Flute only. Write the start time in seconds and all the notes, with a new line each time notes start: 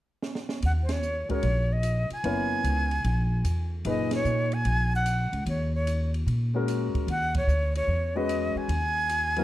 0.66 F#5
0.83 C5
0.92 C#5
1.33 C#5
1.73 D#5
2.13 G#5
3.88 D#5
4.15 C#5
4.54 G#5
4.95 F#5
5.49 C#5
5.75 C#5
7.11 F#5
7.37 C#5
7.77 C#5
8.16 D#5
8.57 G#5